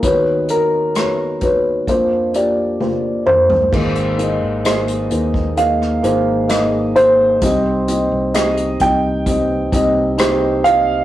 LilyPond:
<<
  \new Staff \with { instrumentName = "Grand piano" } { \time 4/4 \key aes \lydian \tempo 4 = 65 b'8 bes'4 b'8 c''8 d''4 c''8~ | c''4 ees''4 f''4 ees''8 c''8~ | c''4 ees''8 g''4 r4 f''8 | }
  \new Staff \with { instrumentName = "Felt piano" } { \time 4/4 \key aes \lydian <b dis' fis' cis''>8 <b dis' fis' bes'>8 <b dis' fis' cis''>8 <b dis' fis' cis''>8 <bes d' f' c''>8 <bes d' f' g'>8 <bes d' f' c''>8 <bes d' f' c''>8 | <bes ees' aes' c''>8 <bes ees' aes' ees''>8 <bes ees' aes' c''>8 <bes ees' aes' c''>8 <bes ees' aes' ees''>8 <bes ees' aes' c''>8 <bes ees' aes' ees''>8 <bes ees' aes' c''>8 | <c' ees' g' ees''>8 <c' ees' g' ees''>8 <c' ees' g' ees''>8 <c' ees' g' ees''>8 <c' ees' g' ees''>8 <c' ees' g' ees''>8 <c' ees' g' c''>8 <c' ees' g' ees''>8 | }
  \new Staff \with { instrumentName = "Felt piano" } { \clef bass \time 4/4 \key aes \lydian <dis, dis>2 <bes,, f,>2 | <aes, ees>4. r2 r8 | <c g>4. r2 r8 | }
  \new Staff \with { instrumentName = "Fretless electric bass" } { \clef bass \time 4/4 \key aes \lydian r1 | aes,,8. aes,,8. ees,4 aes,,4. | c,8. c,8. c,4 c,4. | }
  \new DrumStaff \with { instrumentName = "Drums" } \drummode { \time 4/4 <hh bd>8 hh8 <hh ss>8 <hh bd>8 <hh bd>8 hh8 tommh8 toml16 tomfh16 | <cymc bd>16 hh16 hh8 <hh ss>16 hh16 hh16 bd16 hh16 ss16 hh8 <hh ss>8 hh8 | <hh bd>8 hh8 <hh ss>16 hh16 <hh bd>8 <hh bd>8 <hh bd>8 <hh ss>8 hh8 | }
>>